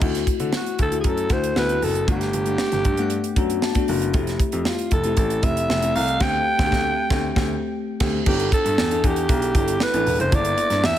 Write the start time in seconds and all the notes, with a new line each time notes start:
0.01 D2 A3 C4 E4 F#4, kick, crash
0.15 snare, closed hi-hat
0.27 kick, closed hi-hat
0.40 D3 A3 C4 E4 F#4, closed hi-hat
0.53 F#4, snare
0.66 closed hi-hat
0.79 D2 A4, kick, closed hi-hat
0.91 A3 C4 E4 F#4, closed hi-hat
1.00 G#4, closed hi-hat
1.04 F#2 A4, kick
1.17 closed hi-hat
1.30 D2 A3 C4 E4 F#4 C5, kick, snare, closed hi-hat
1.44 closed hi-hat
1.56 D2 B3 C4 E4 F#4 B4, snare
1.68 B3 C4 E4 F#4, closed hi-hat
1.82 F#1 A4, open hi-hat
1.95 closed hi-hat
2.08 G1 A3 B3 D4 G4 F#5, kick, closed hi-hat
2.21 snare, closed hi-hat
2.33 G1, closed hi-hat
2.46 A3 B3 D4 F#5, closed hi-hat
2.58 snare
2.72 G1, snare, closed hi-hat
2.85 G2, kick, closed hi-hat
2.97 A3 B3 D4 F#5, closed hi-hat
3.10 closed hi-hat
3.24 closed hi-hat
3.36 F#2 A3 B3 D4 F#4, kick, closed hi-hat
3.50 closed hi-hat
3.62 A5, snare
3.75 A3 B3 D4 F#4, kick, closed hi-hat
3.88 F#1 F#5, open hi-hat
4.02 closed hi-hat
4.14 F1 A3 C4 E4 G4, kick, closed hi-hat
4.27 snare, closed hi-hat
4.40 kick, closed hi-hat
4.52 F2 A3 C4 E4 G4, closed hi-hat
4.65 F4, snare
4.78 closed hi-hat
4.91 F1 A4, kick, closed hi-hat
5.04 A3 C4 E4 G4, closed hi-hat
5.17 A1 A4, kick, closed hi-hat
5.30 closed hi-hat
5.42 F1 A3 C4 E4 G4 E5, kick, closed hi-hat
5.57 closed hi-hat
5.69 F1, snare
5.82 A3 C4 E4 A4, closed hi-hat
5.95 C2 F5, open hi-hat
6.08 closed hi-hat
6.20 D2 A3 C4 G4 G5, kick, snare, crash
6.58 D2 A3 C4, kick, snare
6.66 G4
6.71 D2 A3 C4, kick, snare
6.78 G4
7.09 D2 A3 C4 G4, kick, snare
7.35 D2 A3 C4 G4, kick, snare
8.00 D2 A3 C4 G4, kick, snare, crash
8.26 G1 B3 D4 E4 G4 A4, kick, crash
8.40 closed hi-hat
8.52 A4, kick, closed hi-hat
8.65 G2, closed hi-hat
8.78 E2, snare
8.91 B3 D4 E4 A4, closed hi-hat
9.03 E2 B3 D4 E4 G4 G#4, kick, closed hi-hat
9.10 A4
9.16 closed hi-hat
9.29 B1, kick, closed hi-hat
9.42 closed hi-hat
9.55 G1 B3 D4 E4 A4, kick, closed hi-hat
9.68 closed hi-hat
9.80 B4, snare
9.94 A1 B3 D4 E4 A4, closed hi-hat
10.06 E1, open hi-hat
10.19 F#1 C5, closed hi-hat
10.32 G1 A#3 D4 E4 A4 D5, kick, closed hi-hat
10.39 B3
10.45 closed hi-hat
10.58 closed hi-hat
10.70 G2, snare, closed hi-hat
10.83 E2 E5, snare